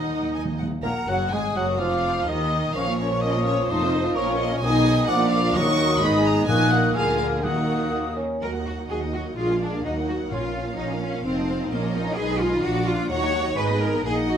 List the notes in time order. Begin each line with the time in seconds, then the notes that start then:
Already playing: D#2 D#4 D#5 F#5
0.07 D#3
0.23 D#3
0.31 D#3 G#5
0.38 D#3
0.45 D#3
0.53 D#3
0.58 D#3 F#5
0.70 D#3
0.83 A#1 A#2 A#3 A#4 F#5 A#5
1.08 F#1 F#2 F#3 F#4 F#5
1.31 G#1 G#2 G#3 G#4 G#5 D#6
1.56 F#1 F#2 F#3 F#4 F#5
1.79 F1 F2 F3 F4 F5 D6
2.27 D#2 D#3 D#4 D#5 D#6
2.74 A#1 A#2 F3 C#4 A#4 C#5 F5 C#6
2.86 A#3 F4 C#5
2.98 F3 C#4 A#4 C#5
3.11 A#3 F4 C#5
3.21 F3 C#4 A#4 D#5 D#6
3.34 A#3 F4 C#5
3.46 F3 C#4 A#4 C#5
3.58 A#3 F4 C#5
3.67 F1 F2 F3 A3 D#4 A4 C5 D#5
3.82 C4 F4 C5
3.93 A3 D#4 A4
4.04 C4 F4 C5
4.15 A#1 A#2 F3 A#3 C#4 F4 A#4 C#5 C#6
4.28 C#4 F4 C#5
4.37 A#3 C#4 F4 A#4 D#5
4.51 C#4 F4 C#5
4.61 B1 B2 D#3 D#4 G#4 D#5 G#5 D#6
4.65 D#3 D#4
5.07 A#1 A#2 F3 A#3 F4 A#4 D5 F#5 D6
5.11 D4
5.30 F5
5.54 D#2 D#3 F#3 A#3 D#4 F#4 A#4 D#5 C#6 D#6
5.58 F#3
6.01 G#1 G#2 G#3 B3 D#4 G#4 D#5 B5
6.25 A#5
6.47 A#1 A#2 A#3 D#4 F#4 A#4 D#5 G#5 F#6
6.71 F#5
6.95 D2 D3 A#3 F4 G#4 A#4 F5 G#5 F6
7.18 F5
7.43 D#2 D#3 A#3 D#4 F#4 A#4 F#5 D#6
7.92 A#3
8.16 C#4
8.40 D#2 F#3 A#3 F#4 A#4 D#5 F#5
8.53 A#3 D#4 A#4 F#5
8.65 F#3 F#4 D#5
8.77 A#3 D#4 A#4 F#5
8.88 D#2 F#3 F#4 G#4 D#5
9.00 A#3 D#4 A#4 F#5
9.12 F#3 F#4 D#5
9.26 A#3 D#4 A#4 F#5
9.36 A#1 G#3 D4 F4 G#4 D5 F5
9.48 A#3 F4 A#4 F5
9.61 G#3 D4 G#4 D5
9.72 A#3 F4 A#4 F5
9.83 D#2 F#3 D#4 F#4 D#5 F#5
9.95 A#3 D#4 A#4 F#5
10.07 F#3 F#4 D#5
10.19 A#3 D#4 A#4 F#5
10.30 A#1 A#2 F3 C#4 F4 C#5 F5
10.41 A#3 C#4 A#4 F5
10.53 C#4 F4 C#5
10.65 A#3 C#4 A#4 F5
10.77 A#1 C#4 D#4 F4 C#5
10.89 A#3 C#4 A#4 F5
11.01 C#4 F4 C#5
11.13 A#3 C#4 A#4 F5
11.25 F1 F3 C4 D#4 F4 C5 F5
11.36 A3 D#4 D#5 A5
11.48 C4 F4 C5 F5
11.59 A3 D#4 D#5 A5
11.70 A#1 F3 A#3 C#4 F4 A#4 D#5 F5
11.81 A#3 C#4 C#5 A#5
11.93 C#4 D#4 F4 A#4 F5
12.04 A#3 C#4 C#5 A#5
12.16 B1 D#3 G#3 D#4 G#4 B4 G#5
12.27 D#3 B3 D#5 B5
12.39 G#3 D#4 F4 B4 G#5
12.52 D#3 B3 D#5 B5
12.62 A#1 F3 D4 F4 F#4 D5 F5 A#5
12.73 A#3 D4 D5 D6
12.85 D4 F4 F5 A#5
12.97 A#3 D4 D5 D6
13.08 D#2 F#3 D#4 F#4 C#5 F#5 A#5
13.21 A#3 D#4 D#5 F#5
13.33 F#3 F#4 F#5 A#5
13.44 A#3 D#4 D#5 F#5
13.55 G#1 G#3 D#4 B4 D#5 G#5
13.68 B3 G#4 D#5 B5
13.80 G#3 D#4 A#4 B4 G#5
13.92 B3 G#4 D#5 B5
14.03 A#1 A#3 D#4 G#4 D#5 F#5
14.29 F#4